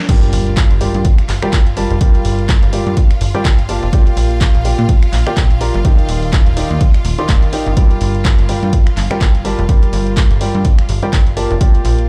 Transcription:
Already playing: string section A#4
0.09 upright piano G3 F4 G4 A#4 D5 G5, string section F4 F5, kick, closed hi-hat, crash, sub drop
0.23 closed hi-hat
0.33 analog synth bass G1, open hi-hat
0.47 closed hi-hat
0.57 kick, clap, closed hi-hat
0.70 analog synth bass G1, closed hi-hat
0.81 upright piano G3 F4 G4 A#4 D5 G5, open hi-hat
0.94 analog synth bass G2, closed hi-hat
1.05 kick, closed hi-hat
1.18 finger snap, closed hi-hat
1.29 analog synth bass G1, clap, open hi-hat
1.42 upright piano G3 F4 G4 A#4 D5 G5, finger snap, closed hi-hat
1.53 analog synth bass G1, kick, clap, closed hi-hat
1.67 closed hi-hat
1.77 upright piano G3 F4 G4 A#4 D5 A5, open hi-hat
1.91 analog synth bass F1, closed hi-hat
2.01 upright piano G3 F4 G4 A#4 D5 G5, kick, closed hi-hat
2.15 closed hi-hat
2.25 analog synth bass G1, open hi-hat
2.39 closed hi-hat
2.49 kick, clap, closed hi-hat
2.63 analog synth bass G1, closed hi-hat
2.73 upright piano G3 F4 G4 A#4 D5 G5, open hi-hat
2.86 analog synth bass G2, closed hi-hat
2.97 kick, closed hi-hat
3.11 finger snap, closed hi-hat
3.21 analog synth bass G1, open hi-hat
3.35 upright piano G3 F4 G4 A#4 D5 G5, closed hi-hat
3.45 analog synth bass G1, kick, clap, closed hi-hat
3.59 closed hi-hat
3.69 upright piano A#3 F4 G4 A#4 D5 A5, open hi-hat
3.83 analog synth bass F1, closed hi-hat
3.93 upright piano A#3 F4 G4 A#4 D5 G5, kick, closed hi-hat
4.07 closed hi-hat
4.17 analog synth bass A#1, open hi-hat
4.31 closed hi-hat
4.41 kick, clap, closed hi-hat
4.54 analog synth bass A#1, closed hi-hat
4.65 upright piano A#3 F4 G4 A#4 D5 G5, open hi-hat
4.79 analog synth bass A#2
4.89 kick, closed hi-hat
5.03 finger snap, closed hi-hat
5.13 analog synth bass A#1, clap, open hi-hat
5.27 upright piano A#3 F4 G4 A#4 D5 G5, finger snap, closed hi-hat
5.37 analog synth bass A#1, kick, clap, closed hi-hat
5.50 closed hi-hat
5.61 upright piano F4 G4 A#4 D5 A#5, open hi-hat
5.74 analog synth bass G1, closed hi-hat
5.85 upright piano D#3 D#4 G4 A#4 D5 G5, kick, closed hi-hat
5.99 closed hi-hat
6.09 analog synth bass D#1, open hi-hat
6.22 open hi-hat
6.33 kick, clap, closed hi-hat
6.46 analog synth bass D#1, closed hi-hat
6.57 upright piano D#3 D#4 G4 A#4 D5 G5, open hi-hat
6.70 analog synth bass D#2, closed hi-hat
6.81 kick, closed hi-hat
6.94 finger snap, closed hi-hat
7.05 analog synth bass D#1, open hi-hat
7.18 upright piano D#3 D#4 G4 A#4 D5 C6, closed hi-hat
7.29 analog synth bass D#1, kick, clap, closed hi-hat
7.42 closed hi-hat
7.53 upright piano D#4 G4 A#4 D5 G5, open hi-hat
7.66 analog synth bass G1, closed hi-hat
7.77 upright piano G3 F4 G4 A#4 D5 G5, kick, closed hi-hat
7.91 closed hi-hat
8.01 analog synth bass G1, open hi-hat
8.15 closed hi-hat
8.25 kick, clap, closed hi-hat
8.39 analog synth bass G1, closed hi-hat
8.49 upright piano G3 F4 G4 A#4 D5 G5, open hi-hat
8.63 analog synth bass G2, closed hi-hat
8.73 kick, closed hi-hat
8.87 finger snap, closed hi-hat
8.97 analog synth bass G1, clap, open hi-hat
9.11 upright piano G3 F4 G4 A#4 D5 G5, finger snap, closed hi-hat
9.21 analog synth bass G1, kick, clap, closed hi-hat
9.35 closed hi-hat
9.45 upright piano G3 F4 G4 A#4 D5 A5, open hi-hat
9.59 analog synth bass F1, closed hi-hat
9.69 upright piano G3 F4 G4 A#4 D5 G5, kick, closed hi-hat
9.83 closed hi-hat
9.93 analog synth bass G1, open hi-hat
10.07 closed hi-hat
10.17 kick, clap, closed hi-hat
10.31 analog synth bass G1, closed hi-hat
10.41 upright piano G3 F4 G4 A#4 D5 G5, open hi-hat
10.55 analog synth bass G2, closed hi-hat
10.65 kick, closed hi-hat
10.79 finger snap, closed hi-hat
10.89 analog synth bass G1, open hi-hat
11.03 upright piano G3 F4 G4 A#4 D5 G5, closed hi-hat
11.13 analog synth bass G1, kick, clap, closed hi-hat
11.27 closed hi-hat
11.37 upright piano A#3 F4 G4 A#4 D5 A5, open hi-hat
11.51 analog synth bass F1, closed hi-hat
11.61 upright piano A#3 F4 G4 A#4 D5 G5, kick, closed hi-hat
11.75 closed hi-hat
11.85 analog synth bass A#1, open hi-hat
11.99 closed hi-hat

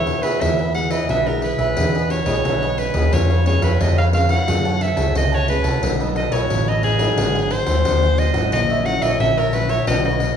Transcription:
Already playing: nylon-string guitar B2 B3 E4 G#4, cavaquinho G#4 B4 E5, soprano saxophone C#5
0.07 pandeiro
0.22 nylon-string guitar B3 E4 G#4, cavaquinho G#4 B4 E5, soprano saxophone B4, pandeiro
0.41 fingered electric bass E2, nylon-string guitar E3 B3 E4 G#4, cavaquinho E4 G#4 B4 E5, soprano saxophone E5, pandeiro
0.58 cavaquinho G#4 B4 E5, pandeiro
0.74 nylon-string guitar B3 E4 G#4, soprano saxophone F#5, muted cavaquinho stroke, pandeiro
0.90 cavaquinho G#4 B4 E5, soprano saxophone D#5, pandeiro
1.09 fingered electric bass B1, nylon-string guitar B2, cavaquinho E4 G#4 B4 E5, soprano saxophone E5, pandeiro
1.27 nylon-string guitar B3 E4 G#4, soprano saxophone A#4, pandeiro
1.42 cavaquinho E4 G#4 B4 E5, soprano saxophone B4, pandeiro
1.58 fingered electric bass B1, cavaquinho G#4 B4 E5, pandeiro
1.77 fingered electric bass E2, nylon-string guitar E3 B3 D#4 G#4, cavaquinho E4 G#4 B4 D#5, pandeiro
1.94 cavaquinho G#4 B4 D#5, pandeiro
2.10 soprano saxophone C#5, muted cavaquinho stroke, pandeiro
2.26 fingered electric bass B1, nylon-string guitar B3 D#4 G#4, cavaquinho G#4 B4 D#5, pandeiro
2.45 fingered electric bass B1, nylon-string guitar B2, cavaquinho E4 G#4 B4 D#5, pandeiro
2.63 cavaquinho G#4 B4 D#5, pandeiro
2.78 soprano saxophone B4, pandeiro
2.94 fingered electric bass D#2, nylon-string guitar B3 C#4 G#4, cavaquinho G#4 B4 D#5, pandeiro
3.13 fingered electric bass F2, nylon-string guitar F3, cavaquinho F4 B4 C#5 F5, soprano saxophone C#5, pandeiro
3.30 cavaquinho B4 C#5 F5, pandeiro
3.46 nylon-string guitar B3 C#4 G#4, soprano saxophone C#5, pandeiro
3.62 fingered electric bass F2, soprano saxophone B4, cavaquinho B4 C#5 F5, pandeiro
3.80 fingered electric bass F2, nylon-string guitar F3 B3 C#4 G#4, soprano saxophone D#5, pandeiro
3.97 cavaquinho B4 C#5 F5, soprano saxophone F5, pandeiro
4.13 nylon-string guitar B3 C#4 G#4, cavaquinho F4 B4 C#5 F5, soprano saxophone F5, pandeiro
4.29 cavaquinho B4 C#5 F5, soprano saxophone F#5, pandeiro
4.48 fingered electric bass F#2, nylon-string guitar F#3 A3 C#4 G#4, cavaquinho G#4 C#5 F#5 A5, pandeiro
4.65 cavaquinho C#5 F#5 A5, pandeiro
4.81 soprano saxophone E5, muted cavaquinho stroke, pandeiro
4.96 fingered electric bass C#2, nylon-string guitar A3 C#4 G#4, cavaquinho C#5 F#5 A5, pandeiro
5.15 fingered electric bass C#2, nylon-string guitar C#3, cavaquinho G#4 C#5 F#5 A5, soprano saxophone D#5, pandeiro
5.32 cavaquinho C#5 F#5 A5, soprano saxophone C#5, pandeiro
5.48 nylon-string guitar A3 C#4 G#4, soprano saxophone B4, pandeiro
5.64 fingered electric bass C2, cavaquinho C#5 F#5 A5, pandeiro
5.82 fingered electric bass B1, nylon-string guitar B2 F#3 A3 D#4, cavaquinho D#4 A4 B4 D#5, pandeiro
5.99 nylon-string guitar F#3 A3 D#4, cavaquinho A4 B4 D#5, pandeiro
6.16 soprano saxophone D#5, pandeiro
6.31 fingered electric bass B1, cavaquinho A4 B4 D#5, soprano saxophone C#5, pandeiro
6.50 fingered electric bass A1, nylon-string guitar F#2 F#3 A3 D#4, pandeiro
6.67 cavaquinho A4 B4 D#5, soprano saxophone D#5, pandeiro
6.83 cavaquinho D#4 A4 B4 D#5, soprano saxophone G#4, pandeiro
6.99 nylon-string guitar F#3 C4 D#4, cavaquinho A4 B4 D#5, pandeiro
7.17 fingered electric bass G#1, nylon-string guitar G#2, cavaquinho F#4 G#4 C5 F#5, pandeiro
7.35 cavaquinho G#4 C5 F#5, pandeiro
7.51 soprano saxophone C5, muted cavaquinho stroke, pandeiro
7.66 fingered electric bass D#2, nylon-string guitar F#3 C4 D#4, cavaquinho G#4 C5 F#5, pandeiro
7.85 fingered electric bass D#2, nylon-string guitar D#3, cavaquinho F#4 G#4 C5 F#5, pandeiro
8.03 cavaquinho G#4 C5 F#5, pandeiro
8.18 soprano saxophone D#5, pandeiro
8.34 fingered electric bass G#1, nylon-string guitar F#3 C#4 E4, cavaquinho G#4 C5 F#5, pandeiro
8.52 fingered electric bass A#1, nylon-string guitar A#2, cavaquinho F#4 A#4 C#5 E5, soprano saxophone D#5, pandeiro
8.70 cavaquinho A#4 C#5 E5, pandeiro
8.86 nylon-string guitar F#3 C#4 E4, soprano saxophone F#5, pandeiro
9.02 fingered electric bass A#1, cavaquinho A#4 C#5 E5, soprano saxophone D#5, pandeiro
9.20 fingered electric bass A#1, nylon-string guitar A#2 F#3 C#4 E4, soprano saxophone E5, pandeiro
9.37 soprano saxophone A#4, cavaquinho A#4 C#5 E5, pandeiro
9.52 nylon-string guitar F#3 C#4 E4, cavaquinho F#4 A#4 C#5 E5, soprano saxophone B4, pandeiro
9.69 cavaquinho A#4 C#5 E5, soprano saxophone C#5, pandeiro
9.87 fingered electric bass B1, nylon-string guitar B2 F#3 C#4 D#4, cavaquinho D#4 B4 C#5 F#5, soprano saxophone D#5, pandeiro
10.04 cavaquinho B4 C#5 F#5, soprano saxophone D#5, pandeiro
10.20 muted cavaquinho stroke, pandeiro

